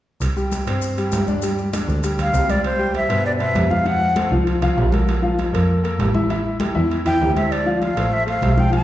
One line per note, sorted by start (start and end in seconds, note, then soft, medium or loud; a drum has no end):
0.21 0.63 C2 medium
0.21 high conga soft
0.21 high timbale medium
0.21 maracas medium
0.36 0.61 G3 medium
0.36 0.61 G4 medium
0.36 high conga soft
0.36 maracas soft
0.52 high conga medium
0.52 high timbale medium
0.52 low timbale medium
0.52 maracas medium
0.67 1.09 G2 medium
0.67 0.92 C4 medium
0.67 0.92 C5 medium
0.67 high conga soft
0.67 high timbale loud
0.67 maracas soft
0.82 high conga soft
0.82 maracas medium
0.97 1.22 G3 medium
0.97 1.23 G4 medium
0.97 high conga soft
0.97 high timbale medium
0.97 maracas soft
1.12 1.83 G2 medium
1.12 high conga medium
1.12 high timbale medium
1.12 low timbale medium
1.12 maracas medium
1.27 1.40 D4 medium
1.27 1.40 D5 medium
1.27 high conga medium
1.27 maracas soft
1.42 1.68 G3 medium
1.42 1.68 G4 medium
1.42 high conga soft
1.42 high timbale medium
1.42 maracas medium
1.58 high conga soft
1.58 maracas soft
1.73 1.98 D4 medium
1.73 1.98 D5 medium
1.73 high conga medium
1.73 high timbale medium
1.73 low timbale medium
1.73 maracas medium
1.87 2.16 D2 medium
1.87 high conga soft
1.87 maracas soft
2.03 2.28 G3 medium
2.03 2.29 G4 medium
2.03 high conga soft
2.03 high timbale medium
2.03 maracas medium
2.18 2.31 D2 medium
2.18 2.52 F5 medium
2.18 high conga soft
2.18 high timbale medium
2.18 maracas soft
2.32 3.04 C2 medium
2.32 2.46 C4 medium
2.32 2.46 C5 medium
2.32 high conga soft
2.32 low timbale medium
2.32 maracas medium
2.49 2.62 G3 medium
2.49 2.62 G4 medium
2.49 2.64 D5 medium
2.49 high conga medium
2.49 high timbale medium
2.49 maracas soft
2.64 2.93 C5 medium
2.64 high conga soft
2.64 high timbale medium
2.79 3.04 G3 medium
2.79 3.04 G4 medium
2.79 3.04 G5 medium
2.79 high conga soft
2.94 3.24 E5 medium
2.94 high conga medium
2.94 high timbale medium
2.94 low timbale medium
3.09 3.52 G2 medium
3.09 3.34 B2 medium
3.09 3.35 B4 medium
3.09 3.35 C5 medium
3.09 high conga soft
3.09 high timbale medium
3.24 3.32 D5 medium
3.24 high conga soft
3.39 3.65 B2 medium
3.39 3.65 B4 medium
3.39 3.65 C5 medium
3.39 3.72 E5 medium
3.39 high conga soft
3.39 high timbale medium
3.54 4.25 F2 medium
3.54 high conga medium
3.54 high timbale medium
3.54 low timbale medium
3.70 3.83 F3 medium
3.70 3.83 F4 medium
3.70 3.88 F5 medium
3.70 3.83 F5 medium
3.70 high conga medium
3.85 4.10 F3 medium
3.85 4.11 F4 medium
3.85 4.11 F#5 medium
3.85 4.32 F#5 loud
3.85 high conga soft
3.85 high timbale medium
4.01 high conga soft
4.16 4.29 A3 medium
4.16 4.29 A4 medium
4.16 4.29 C5 medium
4.16 high conga medium
4.16 high timbale medium
4.16 low timbale medium
4.31 4.60 C2 medium
4.31 4.57 F3 medium
4.31 4.57 F4 medium
4.31 4.57 F5 medium
4.31 high conga soft
4.47 high conga soft
4.47 high timbale medium
4.62 4.76 C2 medium
4.62 4.87 F3 medium
4.62 4.87 F4 medium
4.62 4.87 F5 medium
4.62 high conga soft
4.62 high timbale medium
4.77 5.48 A#1 medium
4.77 high conga soft
4.77 low timbale medium
4.92 5.18 F#3 medium
4.92 5.18 A4 medium
4.92 5.18 A#4 medium
4.92 high conga medium
4.92 high timbale medium
5.08 high conga soft
5.08 high timbale medium
5.22 5.47 F3 medium
5.22 5.48 F4 medium
5.22 5.48 F5 medium
5.22 high conga soft
5.39 high conga medium
5.39 high timbale medium
5.39 low timbale soft
5.53 5.96 F2 medium
5.53 5.78 A#3 medium
5.53 5.78 A4 medium
5.53 5.78 A#4 medium
5.53 high timbale medium
5.69 high conga soft
5.84 6.09 A#3 medium
5.84 6.09 A4 medium
5.84 6.09 A#4 medium
5.84 high conga soft
5.84 high timbale medium
5.99 6.69 A1 medium
5.99 high conga medium
5.99 high timbale medium
5.99 low timbale medium
6.14 6.27 E3 medium
6.14 6.27 E4 medium
6.14 6.27 E5 medium
6.14 high conga medium
6.30 6.55 E3 medium
6.30 6.55 E4 medium
6.30 6.55 E5 medium
6.30 high conga soft
6.30 high timbale medium
6.45 high conga soft
6.60 6.72 G3 medium
6.60 6.73 G4 medium
6.60 6.73 A4 medium
6.60 high conga medium
6.60 high timbale medium
6.60 low timbale medium
6.75 7.04 E2 medium
6.75 7.00 E3 medium
6.75 7.00 E4 medium
6.75 7.00 E5 medium
6.75 high conga soft
6.91 high conga soft
6.91 high timbale medium
7.05 7.20 E2 medium
7.05 7.30 E3 medium
7.05 7.31 E4 medium
7.05 7.31 E5 medium
7.05 7.34 G5 medium
7.05 high conga soft
7.05 high timbale medium
7.21 7.91 D2 medium
7.21 high conga soft
7.21 low timbale medium
7.36 7.61 A3 medium
7.36 7.61 A4 medium
7.36 7.62 C5 medium
7.36 7.53 E5 medium
7.36 high conga medium
7.36 high timbale medium
7.52 7.82 D5 medium
7.52 high conga soft
7.52 high timbale medium
7.66 7.91 F3 medium
7.66 7.91 F4 medium
7.66 7.91 F5 medium
7.66 high conga soft
7.82 8.15 F5 medium
7.82 high conga medium
7.82 high timbale medium
7.82 low timbale medium
7.96 8.39 A1 medium
7.96 8.22 A3 medium
7.96 8.22 A4 medium
7.96 8.22 C5 medium
7.96 high conga soft
7.96 high timbale medium
8.12 8.27 E5 loud
8.12 high conga soft
8.26 8.52 A3 medium
8.26 8.52 A4 medium
8.26 8.52 C5 medium
8.26 8.61 F5 medium
8.26 high conga soft
8.26 high timbale medium
8.41 8.83 B1 medium
8.41 high conga medium
8.41 high timbale medium
8.41 low timbale medium
8.57 8.70 F3 medium
8.57 8.70 F4 medium
8.57 8.70 F5 medium
8.57 8.74 G5 medium
8.57 high conga medium
8.72 8.83 F3 medium
8.72 8.83 F4 medium
8.72 8.83 F5 medium
8.72 8.83 A5 loud
8.72 high conga soft
8.72 high timbale medium